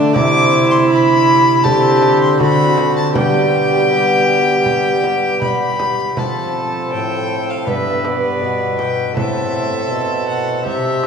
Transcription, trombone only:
0, 0, Header, 1, 2, 480
1, 0, Start_track
1, 0, Key_signature, 1, "major"
1, 0, Tempo, 750000
1, 99, Time_signature, 4, 2, 24, 8
1, 7084, End_track
2, 0, Start_track
2, 0, Title_t, "Trombone"
2, 0, Program_c, 0, 57
2, 0, Note_on_c, 0, 57, 71
2, 101, Note_on_c, 0, 60, 78
2, 110, Note_off_c, 0, 57, 0
2, 877, Note_off_c, 0, 60, 0
2, 1063, Note_on_c, 0, 60, 81
2, 1513, Note_off_c, 0, 60, 0
2, 1534, Note_on_c, 0, 60, 75
2, 2015, Note_on_c, 0, 59, 73
2, 2025, Note_off_c, 0, 60, 0
2, 3743, Note_off_c, 0, 59, 0
2, 3950, Note_on_c, 0, 60, 60
2, 4911, Note_on_c, 0, 59, 63
2, 4921, Note_off_c, 0, 60, 0
2, 5859, Note_off_c, 0, 59, 0
2, 5863, Note_on_c, 0, 60, 56
2, 6802, Note_off_c, 0, 60, 0
2, 6823, Note_on_c, 0, 60, 71
2, 7084, Note_off_c, 0, 60, 0
2, 7084, End_track
0, 0, End_of_file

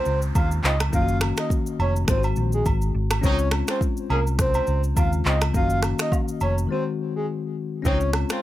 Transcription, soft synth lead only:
0, 0, Header, 1, 2, 480
1, 0, Start_track
1, 0, Key_signature, -5, "major"
1, 0, Tempo, 576923
1, 772, Time_signature, 4, 2, 24, 8
1, 7005, End_track
2, 0, Start_track
2, 0, Title_t, "Soft synth lead"
2, 0, Program_c, 0, 80
2, 0, Note_on_c, 0, 72, 117
2, 166, Note_off_c, 0, 72, 0
2, 301, Note_on_c, 0, 77, 80
2, 409, Note_off_c, 0, 77, 0
2, 543, Note_on_c, 0, 75, 78
2, 651, Note_off_c, 0, 75, 0
2, 780, Note_on_c, 0, 77, 111
2, 981, Note_off_c, 0, 77, 0
2, 1154, Note_on_c, 0, 75, 76
2, 1242, Note_off_c, 0, 75, 0
2, 1504, Note_on_c, 0, 73, 88
2, 1611, Note_off_c, 0, 73, 0
2, 1738, Note_on_c, 0, 72, 92
2, 1848, Note_off_c, 0, 72, 0
2, 2110, Note_on_c, 0, 68, 79
2, 2199, Note_off_c, 0, 68, 0
2, 2697, Note_on_c, 0, 73, 106
2, 2899, Note_off_c, 0, 73, 0
2, 3071, Note_on_c, 0, 72, 86
2, 3160, Note_off_c, 0, 72, 0
2, 3420, Note_on_c, 0, 70, 77
2, 3529, Note_off_c, 0, 70, 0
2, 3660, Note_on_c, 0, 72, 114
2, 4006, Note_off_c, 0, 72, 0
2, 4140, Note_on_c, 0, 77, 81
2, 4249, Note_off_c, 0, 77, 0
2, 4382, Note_on_c, 0, 75, 79
2, 4490, Note_off_c, 0, 75, 0
2, 4622, Note_on_c, 0, 77, 110
2, 4822, Note_off_c, 0, 77, 0
2, 4997, Note_on_c, 0, 75, 77
2, 5083, Note_off_c, 0, 75, 0
2, 5340, Note_on_c, 0, 73, 86
2, 5449, Note_off_c, 0, 73, 0
2, 5582, Note_on_c, 0, 72, 95
2, 5690, Note_off_c, 0, 72, 0
2, 5956, Note_on_c, 0, 68, 78
2, 6043, Note_off_c, 0, 68, 0
2, 6542, Note_on_c, 0, 73, 109
2, 6742, Note_off_c, 0, 73, 0
2, 6914, Note_on_c, 0, 72, 81
2, 7002, Note_off_c, 0, 72, 0
2, 7005, End_track
0, 0, End_of_file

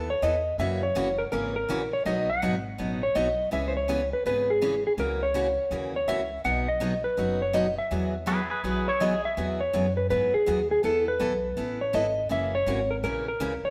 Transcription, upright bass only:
0, 0, Header, 1, 3, 480
1, 0, Start_track
1, 0, Key_signature, 4, "major"
1, 0, Tempo, 365854
1, 779, Time_signature, 4, 2, 24, 8
1, 17976, End_track
2, 0, Start_track
2, 0, Title_t, "Upright bass"
2, 0, Program_c, 0, 32
2, 0, Note_on_c, 0, 39, 83
2, 225, Note_off_c, 0, 39, 0
2, 293, Note_on_c, 0, 40, 76
2, 703, Note_off_c, 0, 40, 0
2, 764, Note_on_c, 0, 42, 84
2, 1154, Note_off_c, 0, 42, 0
2, 1256, Note_on_c, 0, 30, 83
2, 1665, Note_off_c, 0, 30, 0
2, 1736, Note_on_c, 0, 32, 83
2, 2145, Note_off_c, 0, 32, 0
2, 2225, Note_on_c, 0, 34, 77
2, 2630, Note_off_c, 0, 34, 0
2, 2697, Note_on_c, 0, 35, 88
2, 3081, Note_off_c, 0, 35, 0
2, 3183, Note_on_c, 0, 32, 83
2, 3588, Note_off_c, 0, 32, 0
2, 3659, Note_on_c, 0, 33, 84
2, 4066, Note_off_c, 0, 33, 0
2, 4141, Note_on_c, 0, 35, 77
2, 4547, Note_off_c, 0, 35, 0
2, 4628, Note_on_c, 0, 37, 86
2, 5391, Note_off_c, 0, 37, 0
2, 5582, Note_on_c, 0, 32, 80
2, 6348, Note_off_c, 0, 32, 0
2, 6525, Note_on_c, 0, 37, 89
2, 7298, Note_off_c, 0, 37, 0
2, 7487, Note_on_c, 0, 39, 83
2, 7899, Note_off_c, 0, 39, 0
2, 7969, Note_on_c, 0, 37, 73
2, 8381, Note_off_c, 0, 37, 0
2, 8459, Note_on_c, 0, 35, 87
2, 9226, Note_off_c, 0, 35, 0
2, 9415, Note_on_c, 0, 30, 86
2, 10184, Note_off_c, 0, 30, 0
2, 10379, Note_on_c, 0, 40, 81
2, 11147, Note_off_c, 0, 40, 0
2, 11330, Note_on_c, 0, 35, 85
2, 12101, Note_off_c, 0, 35, 0
2, 12297, Note_on_c, 0, 40, 82
2, 12764, Note_off_c, 0, 40, 0
2, 12780, Note_on_c, 0, 42, 96
2, 13246, Note_off_c, 0, 42, 0
2, 13268, Note_on_c, 0, 44, 88
2, 13549, Note_off_c, 0, 44, 0
2, 13744, Note_on_c, 0, 39, 90
2, 14208, Note_off_c, 0, 39, 0
2, 14220, Note_on_c, 0, 40, 79
2, 14686, Note_off_c, 0, 40, 0
2, 14704, Note_on_c, 0, 35, 96
2, 15168, Note_off_c, 0, 35, 0
2, 15178, Note_on_c, 0, 33, 82
2, 15646, Note_off_c, 0, 33, 0
2, 15663, Note_on_c, 0, 32, 82
2, 16129, Note_off_c, 0, 32, 0
2, 16135, Note_on_c, 0, 30, 83
2, 16605, Note_off_c, 0, 30, 0
2, 16615, Note_on_c, 0, 32, 95
2, 17085, Note_off_c, 0, 32, 0
2, 17095, Note_on_c, 0, 34, 82
2, 17565, Note_off_c, 0, 34, 0
2, 17580, Note_on_c, 0, 37, 88
2, 17868, Note_off_c, 0, 37, 0
2, 17976, End_track
3, 0, Start_track
3, 0, Title_t, "Muted upright bass strokes"
3, 13568, Note_on_c, 9, 29, 41
3, 13699, Note_off_c, 9, 29, 0
3, 17881, Note_on_c, 9, 29, 40
3, 17976, Note_off_c, 9, 29, 0
3, 17976, End_track
0, 0, End_of_file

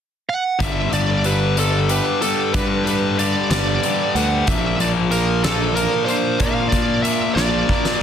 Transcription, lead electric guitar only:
0, 0, Header, 1, 2, 480
1, 0, Start_track
1, 0, Tempo, 645161
1, 445, Time_signature, 6, 3, 24, 8
1, 5972, End_track
2, 0, Start_track
2, 0, Title_t, "Lead electric guitar"
2, 0, Program_c, 0, 29
2, 218, Note_on_c, 0, 78, 93
2, 459, Note_off_c, 0, 78, 0
2, 459, Note_on_c, 0, 76, 78
2, 691, Note_off_c, 0, 76, 0
2, 694, Note_on_c, 0, 74, 80
2, 933, Note_on_c, 0, 71, 84
2, 937, Note_off_c, 0, 74, 0
2, 1177, Note_off_c, 0, 71, 0
2, 1184, Note_on_c, 0, 69, 74
2, 1416, Note_off_c, 0, 69, 0
2, 1419, Note_on_c, 0, 71, 85
2, 1637, Note_off_c, 0, 71, 0
2, 1651, Note_on_c, 0, 69, 80
2, 1885, Note_off_c, 0, 69, 0
2, 1888, Note_on_c, 0, 71, 77
2, 2111, Note_off_c, 0, 71, 0
2, 2120, Note_on_c, 0, 71, 79
2, 2347, Note_off_c, 0, 71, 0
2, 2373, Note_on_c, 0, 74, 83
2, 2594, Note_off_c, 0, 74, 0
2, 2610, Note_on_c, 0, 74, 77
2, 3090, Note_on_c, 0, 78, 86
2, 3103, Note_off_c, 0, 74, 0
2, 3330, Note_on_c, 0, 76, 82
2, 3336, Note_off_c, 0, 78, 0
2, 3573, Note_off_c, 0, 76, 0
2, 3576, Note_on_c, 0, 74, 85
2, 3639, Note_off_c, 0, 74, 0
2, 3802, Note_on_c, 0, 70, 77
2, 4027, Note_off_c, 0, 70, 0
2, 4045, Note_on_c, 0, 69, 68
2, 4277, Note_off_c, 0, 69, 0
2, 4280, Note_on_c, 0, 70, 78
2, 4500, Note_off_c, 0, 70, 0
2, 4503, Note_on_c, 0, 72, 81
2, 4760, Note_on_c, 0, 77, 76
2, 4762, Note_off_c, 0, 72, 0
2, 4973, Note_off_c, 0, 77, 0
2, 4976, Note_on_c, 0, 74, 79
2, 5225, Note_off_c, 0, 74, 0
2, 5227, Note_on_c, 0, 76, 84
2, 5464, Note_off_c, 0, 76, 0
2, 5467, Note_on_c, 0, 74, 67
2, 5972, Note_off_c, 0, 74, 0
2, 5972, End_track
0, 0, End_of_file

